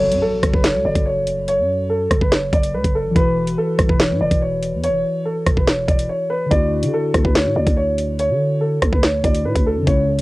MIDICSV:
0, 0, Header, 1, 6, 480
1, 0, Start_track
1, 0, Tempo, 419580
1, 1693, Time_signature, 4, 2, 24, 8
1, 11687, End_track
2, 0, Start_track
2, 0, Title_t, "Grand piano"
2, 0, Program_c, 0, 0
2, 0, Note_on_c, 0, 73, 104
2, 223, Note_off_c, 0, 73, 0
2, 251, Note_on_c, 0, 69, 95
2, 590, Note_off_c, 0, 69, 0
2, 616, Note_on_c, 0, 71, 86
2, 726, Note_off_c, 0, 71, 0
2, 732, Note_on_c, 0, 73, 93
2, 955, Note_off_c, 0, 73, 0
2, 975, Note_on_c, 0, 74, 76
2, 1197, Note_off_c, 0, 74, 0
2, 1210, Note_on_c, 0, 73, 79
2, 1662, Note_off_c, 0, 73, 0
2, 1696, Note_on_c, 0, 73, 105
2, 2146, Note_off_c, 0, 73, 0
2, 2169, Note_on_c, 0, 69, 84
2, 2509, Note_off_c, 0, 69, 0
2, 2536, Note_on_c, 0, 71, 78
2, 2646, Note_off_c, 0, 71, 0
2, 2651, Note_on_c, 0, 73, 73
2, 2875, Note_off_c, 0, 73, 0
2, 2896, Note_on_c, 0, 74, 81
2, 3118, Note_off_c, 0, 74, 0
2, 3138, Note_on_c, 0, 71, 79
2, 3359, Note_off_c, 0, 71, 0
2, 3374, Note_on_c, 0, 69, 82
2, 3597, Note_off_c, 0, 69, 0
2, 3609, Note_on_c, 0, 71, 107
2, 4062, Note_off_c, 0, 71, 0
2, 4094, Note_on_c, 0, 69, 88
2, 4432, Note_off_c, 0, 69, 0
2, 4454, Note_on_c, 0, 71, 82
2, 4565, Note_off_c, 0, 71, 0
2, 4575, Note_on_c, 0, 73, 83
2, 4797, Note_off_c, 0, 73, 0
2, 4812, Note_on_c, 0, 74, 79
2, 5036, Note_off_c, 0, 74, 0
2, 5053, Note_on_c, 0, 73, 78
2, 5504, Note_off_c, 0, 73, 0
2, 5534, Note_on_c, 0, 73, 110
2, 5984, Note_off_c, 0, 73, 0
2, 6009, Note_on_c, 0, 69, 77
2, 6349, Note_off_c, 0, 69, 0
2, 6375, Note_on_c, 0, 71, 76
2, 6485, Note_off_c, 0, 71, 0
2, 6496, Note_on_c, 0, 73, 78
2, 6717, Note_off_c, 0, 73, 0
2, 6726, Note_on_c, 0, 74, 77
2, 6952, Note_off_c, 0, 74, 0
2, 6969, Note_on_c, 0, 73, 82
2, 7194, Note_off_c, 0, 73, 0
2, 7205, Note_on_c, 0, 71, 88
2, 7432, Note_off_c, 0, 71, 0
2, 7445, Note_on_c, 0, 74, 96
2, 7900, Note_off_c, 0, 74, 0
2, 7935, Note_on_c, 0, 69, 89
2, 8273, Note_off_c, 0, 69, 0
2, 8284, Note_on_c, 0, 71, 81
2, 8400, Note_off_c, 0, 71, 0
2, 8408, Note_on_c, 0, 73, 91
2, 8634, Note_off_c, 0, 73, 0
2, 8651, Note_on_c, 0, 74, 72
2, 8875, Note_off_c, 0, 74, 0
2, 8887, Note_on_c, 0, 73, 85
2, 9341, Note_off_c, 0, 73, 0
2, 9377, Note_on_c, 0, 73, 112
2, 9826, Note_off_c, 0, 73, 0
2, 9847, Note_on_c, 0, 69, 78
2, 10188, Note_off_c, 0, 69, 0
2, 10210, Note_on_c, 0, 71, 77
2, 10323, Note_off_c, 0, 71, 0
2, 10336, Note_on_c, 0, 73, 82
2, 10558, Note_off_c, 0, 73, 0
2, 10571, Note_on_c, 0, 74, 80
2, 10795, Note_off_c, 0, 74, 0
2, 10815, Note_on_c, 0, 71, 80
2, 11037, Note_off_c, 0, 71, 0
2, 11056, Note_on_c, 0, 69, 83
2, 11278, Note_off_c, 0, 69, 0
2, 11295, Note_on_c, 0, 73, 100
2, 11687, Note_off_c, 0, 73, 0
2, 11687, End_track
3, 0, Start_track
3, 0, Title_t, "Tine electric piano"
3, 0, Program_c, 1, 4
3, 0, Control_c, 1, 64, 127
3, 0, Note_on_c, 1, 54, 67
3, 0, Note_on_c, 1, 66, 62
3, 0, Note_on_c, 1, 69, 59
3, 0, Note_on_c, 1, 73, 77
3, 3539, Note_off_c, 1, 54, 0
3, 3558, Note_off_c, 1, 66, 0
3, 3560, Note_on_c, 1, 52, 69
3, 3577, Note_off_c, 1, 69, 0
3, 3596, Note_off_c, 1, 73, 0
3, 3598, Note_on_c, 1, 64, 62
3, 3629, Control_c, 1, 64, 0
3, 3636, Note_on_c, 1, 66, 64
3, 3674, Note_on_c, 1, 71, 73
3, 3792, Control_c, 1, 64, 127
3, 7380, Note_off_c, 1, 52, 0
3, 7391, Note_on_c, 1, 50, 71
3, 7399, Note_off_c, 1, 64, 0
3, 7419, Note_off_c, 1, 66, 0
3, 7429, Note_on_c, 1, 62, 62
3, 7437, Note_off_c, 1, 71, 0
3, 7467, Note_on_c, 1, 64, 61
3, 7470, Control_c, 1, 64, 0
3, 7505, Note_on_c, 1, 66, 76
3, 7637, Control_c, 1, 64, 127
3, 10496, Note_off_c, 1, 50, 0
3, 10515, Note_off_c, 1, 62, 0
3, 10534, Note_off_c, 1, 64, 0
3, 10544, Note_on_c, 1, 50, 45
3, 10553, Note_off_c, 1, 66, 0
3, 10564, Note_on_c, 1, 62, 43
3, 10583, Note_on_c, 1, 64, 42
3, 10602, Note_on_c, 1, 66, 55
3, 11237, Note_on_c, 1, 49, 71
3, 11275, Note_on_c, 1, 61, 62
3, 11279, Note_off_c, 1, 50, 0
3, 11288, Note_off_c, 1, 62, 0
3, 11298, Note_off_c, 1, 64, 0
3, 11307, Note_off_c, 1, 66, 0
3, 11307, Control_c, 1, 64, 0
3, 11313, Note_on_c, 1, 64, 58
3, 11490, Control_c, 1, 64, 127
3, 11687, Note_off_c, 1, 49, 0
3, 11687, Note_off_c, 1, 61, 0
3, 11687, Note_off_c, 1, 64, 0
3, 11687, End_track
4, 0, Start_track
4, 0, Title_t, "808-style bass"
4, 0, Program_c, 2, 38
4, 0, Note_on_c, 2, 30, 107
4, 133, Note_on_c, 2, 42, 99
4, 150, Note_off_c, 2, 30, 0
4, 247, Note_off_c, 2, 42, 0
4, 492, Note_on_c, 2, 30, 106
4, 607, Note_off_c, 2, 30, 0
4, 612, Note_on_c, 2, 30, 111
4, 852, Note_on_c, 2, 37, 95
4, 869, Note_off_c, 2, 30, 0
4, 966, Note_off_c, 2, 37, 0
4, 973, Note_on_c, 2, 30, 109
4, 1085, Note_off_c, 2, 30, 0
4, 1092, Note_on_c, 2, 30, 107
4, 1812, Note_on_c, 2, 42, 101
4, 1829, Note_off_c, 2, 30, 0
4, 2382, Note_off_c, 2, 42, 0
4, 2412, Note_on_c, 2, 30, 101
4, 2528, Note_off_c, 2, 30, 0
4, 2533, Note_on_c, 2, 30, 109
4, 2878, Note_off_c, 2, 30, 0
4, 2892, Note_on_c, 2, 30, 111
4, 3133, Note_on_c, 2, 37, 101
4, 3150, Note_off_c, 2, 30, 0
4, 3247, Note_off_c, 2, 37, 0
4, 3252, Note_on_c, 2, 30, 107
4, 3492, Note_on_c, 2, 33, 99
4, 3509, Note_off_c, 2, 30, 0
4, 3606, Note_off_c, 2, 33, 0
4, 3613, Note_on_c, 2, 28, 115
4, 4074, Note_off_c, 2, 28, 0
4, 4333, Note_on_c, 2, 35, 104
4, 4448, Note_off_c, 2, 35, 0
4, 4452, Note_on_c, 2, 28, 114
4, 4694, Note_on_c, 2, 44, 102
4, 4711, Note_off_c, 2, 28, 0
4, 4807, Note_off_c, 2, 44, 0
4, 4814, Note_on_c, 2, 28, 110
4, 4925, Note_off_c, 2, 28, 0
4, 4932, Note_on_c, 2, 28, 105
4, 5412, Note_on_c, 2, 40, 98
4, 5429, Note_off_c, 2, 28, 0
4, 5593, Note_on_c, 2, 28, 103
4, 5610, Note_off_c, 2, 40, 0
4, 5764, Note_off_c, 2, 28, 0
4, 6252, Note_on_c, 2, 28, 105
4, 6365, Note_off_c, 2, 28, 0
4, 6372, Note_on_c, 2, 28, 110
4, 6718, Note_off_c, 2, 28, 0
4, 6731, Note_on_c, 2, 28, 104
4, 6962, Note_off_c, 2, 28, 0
4, 7452, Note_on_c, 2, 38, 109
4, 7812, Note_on_c, 2, 50, 97
4, 7829, Note_off_c, 2, 38, 0
4, 7926, Note_off_c, 2, 50, 0
4, 8173, Note_on_c, 2, 38, 109
4, 8288, Note_off_c, 2, 38, 0
4, 8293, Note_on_c, 2, 38, 114
4, 8532, Note_on_c, 2, 45, 99
4, 8549, Note_off_c, 2, 38, 0
4, 8646, Note_off_c, 2, 45, 0
4, 8652, Note_on_c, 2, 38, 109
4, 8768, Note_off_c, 2, 38, 0
4, 8772, Note_on_c, 2, 38, 106
4, 9493, Note_on_c, 2, 50, 98
4, 9510, Note_off_c, 2, 38, 0
4, 10063, Note_off_c, 2, 50, 0
4, 10091, Note_on_c, 2, 38, 108
4, 10207, Note_off_c, 2, 38, 0
4, 10212, Note_on_c, 2, 38, 107
4, 10558, Note_off_c, 2, 38, 0
4, 10571, Note_on_c, 2, 38, 109
4, 10811, Note_on_c, 2, 45, 100
4, 10828, Note_off_c, 2, 38, 0
4, 10926, Note_off_c, 2, 45, 0
4, 10931, Note_on_c, 2, 38, 108
4, 11173, Note_on_c, 2, 42, 98
4, 11190, Note_off_c, 2, 38, 0
4, 11287, Note_off_c, 2, 42, 0
4, 11292, Note_on_c, 2, 37, 108
4, 11687, Note_off_c, 2, 37, 0
4, 11687, End_track
5, 0, Start_track
5, 0, Title_t, "Impact"
5, 0, Program_c, 3, 103
5, 0, Note_on_c, 3, 60, 82
5, 1692, Note_off_c, 3, 60, 0
5, 11687, End_track
6, 0, Start_track
6, 0, Title_t, "Drums"
6, 133, Note_on_c, 9, 42, 83
6, 247, Note_off_c, 9, 42, 0
6, 492, Note_on_c, 9, 36, 88
6, 493, Note_on_c, 9, 37, 89
6, 493, Note_on_c, 9, 42, 79
6, 607, Note_off_c, 9, 36, 0
6, 607, Note_off_c, 9, 37, 0
6, 607, Note_off_c, 9, 42, 0
6, 612, Note_on_c, 9, 36, 94
6, 727, Note_off_c, 9, 36, 0
6, 732, Note_on_c, 9, 38, 118
6, 732, Note_on_c, 9, 42, 82
6, 847, Note_off_c, 9, 38, 0
6, 847, Note_off_c, 9, 42, 0
6, 1092, Note_on_c, 9, 36, 96
6, 1093, Note_on_c, 9, 42, 80
6, 1207, Note_off_c, 9, 36, 0
6, 1207, Note_off_c, 9, 42, 0
6, 1452, Note_on_c, 9, 42, 84
6, 1567, Note_off_c, 9, 42, 0
6, 1692, Note_on_c, 9, 42, 75
6, 1807, Note_off_c, 9, 42, 0
6, 2412, Note_on_c, 9, 36, 91
6, 2413, Note_on_c, 9, 37, 93
6, 2413, Note_on_c, 9, 42, 75
6, 2527, Note_off_c, 9, 36, 0
6, 2527, Note_off_c, 9, 37, 0
6, 2527, Note_off_c, 9, 42, 0
6, 2533, Note_on_c, 9, 36, 90
6, 2647, Note_off_c, 9, 36, 0
6, 2653, Note_on_c, 9, 38, 120
6, 2653, Note_on_c, 9, 42, 72
6, 2768, Note_off_c, 9, 38, 0
6, 2768, Note_off_c, 9, 42, 0
6, 2892, Note_on_c, 9, 36, 103
6, 2893, Note_on_c, 9, 42, 75
6, 3007, Note_off_c, 9, 36, 0
6, 3008, Note_off_c, 9, 42, 0
6, 3013, Note_on_c, 9, 42, 86
6, 3127, Note_off_c, 9, 42, 0
6, 3252, Note_on_c, 9, 36, 86
6, 3253, Note_on_c, 9, 42, 83
6, 3367, Note_off_c, 9, 36, 0
6, 3368, Note_off_c, 9, 42, 0
6, 3613, Note_on_c, 9, 36, 124
6, 3613, Note_on_c, 9, 42, 75
6, 3727, Note_off_c, 9, 36, 0
6, 3727, Note_off_c, 9, 42, 0
6, 3973, Note_on_c, 9, 42, 82
6, 4087, Note_off_c, 9, 42, 0
6, 4332, Note_on_c, 9, 36, 92
6, 4332, Note_on_c, 9, 37, 89
6, 4332, Note_on_c, 9, 42, 80
6, 4447, Note_off_c, 9, 36, 0
6, 4447, Note_off_c, 9, 37, 0
6, 4447, Note_off_c, 9, 42, 0
6, 4452, Note_on_c, 9, 36, 94
6, 4567, Note_off_c, 9, 36, 0
6, 4572, Note_on_c, 9, 38, 118
6, 4572, Note_on_c, 9, 42, 82
6, 4686, Note_off_c, 9, 38, 0
6, 4686, Note_off_c, 9, 42, 0
6, 4932, Note_on_c, 9, 36, 96
6, 4932, Note_on_c, 9, 42, 81
6, 5046, Note_off_c, 9, 36, 0
6, 5047, Note_off_c, 9, 42, 0
6, 5292, Note_on_c, 9, 42, 81
6, 5407, Note_off_c, 9, 42, 0
6, 5532, Note_on_c, 9, 42, 75
6, 5647, Note_off_c, 9, 42, 0
6, 6252, Note_on_c, 9, 36, 93
6, 6252, Note_on_c, 9, 37, 93
6, 6252, Note_on_c, 9, 42, 81
6, 6366, Note_off_c, 9, 36, 0
6, 6366, Note_off_c, 9, 37, 0
6, 6366, Note_off_c, 9, 42, 0
6, 6372, Note_on_c, 9, 36, 90
6, 6486, Note_off_c, 9, 36, 0
6, 6492, Note_on_c, 9, 38, 115
6, 6492, Note_on_c, 9, 42, 72
6, 6606, Note_off_c, 9, 38, 0
6, 6606, Note_off_c, 9, 42, 0
6, 6731, Note_on_c, 9, 36, 97
6, 6732, Note_on_c, 9, 42, 76
6, 6846, Note_off_c, 9, 36, 0
6, 6846, Note_off_c, 9, 42, 0
6, 6852, Note_on_c, 9, 42, 89
6, 6966, Note_off_c, 9, 42, 0
6, 7452, Note_on_c, 9, 36, 122
6, 7452, Note_on_c, 9, 42, 74
6, 7566, Note_off_c, 9, 42, 0
6, 7567, Note_off_c, 9, 36, 0
6, 7812, Note_on_c, 9, 42, 84
6, 7926, Note_off_c, 9, 42, 0
6, 8172, Note_on_c, 9, 36, 90
6, 8172, Note_on_c, 9, 37, 90
6, 8172, Note_on_c, 9, 42, 77
6, 8286, Note_off_c, 9, 37, 0
6, 8286, Note_off_c, 9, 42, 0
6, 8287, Note_off_c, 9, 36, 0
6, 8293, Note_on_c, 9, 36, 90
6, 8407, Note_off_c, 9, 36, 0
6, 8413, Note_on_c, 9, 38, 116
6, 8413, Note_on_c, 9, 42, 81
6, 8527, Note_off_c, 9, 38, 0
6, 8527, Note_off_c, 9, 42, 0
6, 8772, Note_on_c, 9, 36, 100
6, 8772, Note_on_c, 9, 42, 79
6, 8886, Note_off_c, 9, 36, 0
6, 8886, Note_off_c, 9, 42, 0
6, 9133, Note_on_c, 9, 42, 86
6, 9247, Note_off_c, 9, 42, 0
6, 9372, Note_on_c, 9, 42, 74
6, 9487, Note_off_c, 9, 42, 0
6, 10092, Note_on_c, 9, 36, 88
6, 10092, Note_on_c, 9, 37, 92
6, 10092, Note_on_c, 9, 42, 79
6, 10206, Note_off_c, 9, 36, 0
6, 10206, Note_off_c, 9, 37, 0
6, 10206, Note_off_c, 9, 42, 0
6, 10212, Note_on_c, 9, 36, 88
6, 10327, Note_off_c, 9, 36, 0
6, 10331, Note_on_c, 9, 38, 113
6, 10331, Note_on_c, 9, 42, 72
6, 10446, Note_off_c, 9, 38, 0
6, 10446, Note_off_c, 9, 42, 0
6, 10571, Note_on_c, 9, 36, 98
6, 10571, Note_on_c, 9, 42, 76
6, 10685, Note_off_c, 9, 42, 0
6, 10686, Note_off_c, 9, 36, 0
6, 10692, Note_on_c, 9, 42, 89
6, 10806, Note_off_c, 9, 42, 0
6, 10931, Note_on_c, 9, 36, 87
6, 10932, Note_on_c, 9, 42, 83
6, 11046, Note_off_c, 9, 36, 0
6, 11046, Note_off_c, 9, 42, 0
6, 11292, Note_on_c, 9, 36, 125
6, 11292, Note_on_c, 9, 42, 76
6, 11406, Note_off_c, 9, 42, 0
6, 11407, Note_off_c, 9, 36, 0
6, 11652, Note_on_c, 9, 42, 82
6, 11687, Note_off_c, 9, 42, 0
6, 11687, End_track
0, 0, End_of_file